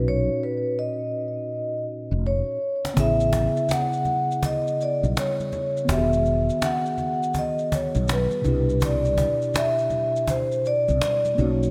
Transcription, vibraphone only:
0.08 0.40 C#5 medium
0.43 0.76 B4 medium
0.79 1.84 D#5 medium
2.27 3.00 C#5 loud
3.00 3.68 E5 loud
3.72 4.40 F#5 loud
4.45 4.82 D#5 loud
4.83 4.98 D5 medium
5.19 5.93 C#5 loud
5.91 6.66 E5 loud
6.64 7.39 F#5 loud
7.39 7.75 D#5 loud
7.75 8.11 C#5 medium
8.12 8.86 B4 medium
8.85 9.59 D5 loud
9.57 10.32 E5 medium
10.30 10.67 C5 medium
10.67 11.41 D5 loud
11.40 11.71 C#5 medium

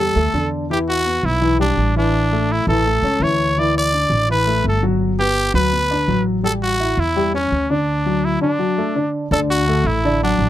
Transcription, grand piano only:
0.00 0.13 G3 medium
0.00 0.13 G4 medium
0.16 0.30 A3 medium
0.16 0.31 A4 medium
0.34 0.64 D3 medium
0.34 0.63 D4 medium
0.70 0.99 E3 medium
0.70 1.00 E4 medium
1.05 1.35 B3 medium
1.05 1.35 B4 medium
1.41 1.56 E3 medium
1.41 1.56 E4 medium
1.59 1.89 G3 medium
1.59 1.89 G4 medium
1.96 2.25 E3 medium
1.96 2.25 E4 medium
2.32 2.61 A3 medium
2.32 2.61 A4 medium
2.68 2.82 E3 medium
2.68 2.83 E4 medium
2.86 3.00 A3 medium
2.86 3.00 A4 medium
3.04 3.18 C#4 medium
3.04 3.18 C#5 medium
3.21 3.51 E3 medium
3.21 3.51 E4 medium
3.57 3.86 E3 medium
3.57 3.87 E4 medium
3.93 4.22 D4 medium
3.93 4.22 D5 medium
4.29 4.44 E3 medium
4.29 4.44 E4 medium
4.47 4.76 A3 medium
4.47 4.76 A4 medium
4.83 5.12 F#3 medium
4.83 5.12 F#4 medium
5.19 5.48 B3 medium
5.19 5.48 B4 medium
5.54 5.68 F#3 medium
5.54 5.69 F#4 medium
5.91 6.05 D4 medium
5.91 6.05 D5 medium
6.08 6.37 F#3 medium
6.08 6.37 F#4 medium
6.43 6.73 G3 medium
6.43 6.73 G4 medium
6.80 7.09 E4 medium
6.80 7.09 E5 medium
7.16 7.31 G3 medium
7.16 7.31 G4 medium
7.34 7.63 C#4 medium
7.34 7.63 C#5 medium
7.70 7.99 D3 medium
7.70 8.00 D4 medium
8.06 8.35 F#3 medium
8.06 8.35 F#4 medium
8.41 8.56 D3 medium
8.41 8.56 D4 medium
8.59 8.74 F#3 medium
8.59 8.74 F#4 medium
8.78 8.92 A3 medium
8.78 8.93 A4 medium
8.95 9.25 D3 medium
8.95 9.25 D4 medium
9.32 9.61 D3 medium
9.32 9.61 D4 medium
9.32 9.61 D5 medium
9.68 9.97 A3 medium
9.68 9.98 A4 medium
9.68 9.98 A5 medium
10.05 10.19 D3 medium
10.05 10.19 D4 medium
10.05 10.19 D5 medium
10.23 10.49 F#3 medium
10.23 10.49 F#4 medium
10.23 10.49 F#5 medium

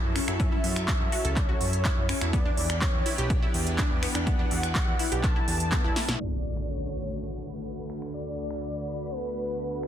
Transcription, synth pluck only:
0.16 0.24 C#4 medium
0.28 0.39 E4 medium
0.40 0.48 C#4 medium
0.52 0.57 E4 medium
1.12 1.17 F#4 medium
1.25 1.36 A4 medium
1.49 1.54 F#4 medium
1.85 1.93 E4 loud
2.09 2.17 C#4 medium
2.21 2.33 E4 medium
2.33 2.42 B3 medium
2.46 2.50 D4 medium
3.06 3.11 E4 medium
3.18 3.30 G4 medium
3.42 3.47 E4 medium
3.78 3.87 D4 loud
4.03 4.11 B3 medium
4.15 4.26 D4 medium
4.27 4.35 B3 medium
4.39 4.44 D4 medium
4.99 5.04 E4 medium
5.12 5.23 G4 medium
5.36 5.41 E4 medium
5.72 5.84 B3 medium
5.84 5.92 E4 loud
5.96 6.05 E4 medium
6.09 6.17 E4 medium

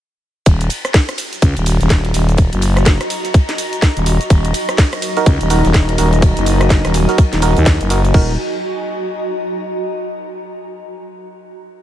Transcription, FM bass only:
0.46 0.69 D#1 loud
1.42 1.54 C#2 loud
1.57 1.78 D#1 loud
1.81 2.13 D#1 loud
2.14 2.50 D#1 loud
2.53 2.98 F#1 loud
3.97 4.18 D#1 loud
4.30 4.53 D#1 loud
5.26 5.38 C#2 medium
5.41 5.62 D#1 loud
5.65 5.97 D#1 loud
5.98 6.34 D#1 loud
6.37 6.82 F#1 loud
6.85 7.06 D#1 loud
7.33 7.54 D#1 loud
7.57 7.78 D#2 loud
7.81 8.13 F#1 medium
8.14 8.37 D#1 loud

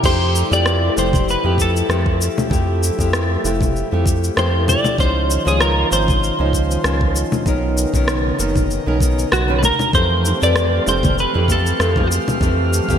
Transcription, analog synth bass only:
0.04 0.44 F2 medium
0.51 0.90 F2 loud
0.97 1.37 F1 medium
1.44 1.83 F2 loud
1.89 2.29 F2 medium
2.51 2.91 F2 medium
2.99 3.37 F2 loud
3.44 3.84 F1 medium
3.92 4.30 F2 loud
4.37 4.77 F2 medium
4.99 5.38 C#2 medium
5.46 5.85 C#2 loud
5.92 6.31 G#1 medium
6.39 6.78 C#2 loud
6.85 7.24 C#2 medium
7.46 7.86 B1 medium
7.94 8.32 B1 loud
8.39 8.79 F#1 loud
8.87 9.25 B1 loud
9.32 9.72 B1 medium
9.94 10.33 F2 medium
10.42 10.80 F2 loud
10.87 11.26 F1 medium
11.35 11.73 F2 medium
11.80 12.19 F2 medium
12.41 12.81 F2 medium
12.89 12.98 F2 loud

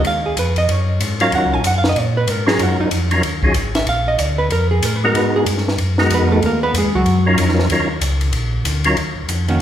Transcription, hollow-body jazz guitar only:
0.07 0.25 F5 loud
0.26 0.37 G#4 medium
0.39 0.57 B4 medium
0.58 0.72 D#5 loud
0.72 1.21 C#5 medium
1.22 1.33 F5 loud
1.35 1.54 F#5 medium
1.54 1.65 G#5 loud
1.67 1.76 F#5 loud
1.78 1.87 F5 medium
1.89 2.00 D#5 medium
2.00 2.17 C#5 medium
2.17 2.30 B4 medium
2.30 2.48 A#4 medium
2.49 2.60 G#4 loud
2.63 2.80 F#4 medium
2.81 2.88 D#4 medium
3.75 3.87 E5 loud
3.89 4.07 F5 loud
4.08 4.21 D#5 loud
4.21 4.39 D5 medium
4.38 4.50 B4 loud
4.52 4.71 A#4 medium
4.71 4.85 G#4 medium
4.85 4.96 A#4 medium
4.96 5.05 B4 loud
5.06 5.18 A#4 medium
5.18 5.35 B4 loud
5.36 5.43 G#4 loud
6.14 6.32 B3 medium
6.14 6.31 B4 loud
6.31 6.43 A3 medium
6.31 6.43 A4 medium
6.46 6.63 A#3 medium
6.46 6.63 A#4 medium
6.63 6.75 B3 medium
6.63 6.74 B4 loud
6.77 6.95 G#3 medium
6.77 6.95 G#4 medium
6.95 7.36 F#3 medium
6.95 7.36 F#4 loud
9.48 9.62 D#3 medium
9.48 9.62 A#3 medium
9.48 9.62 C#4 medium
9.48 9.62 F#4 medium

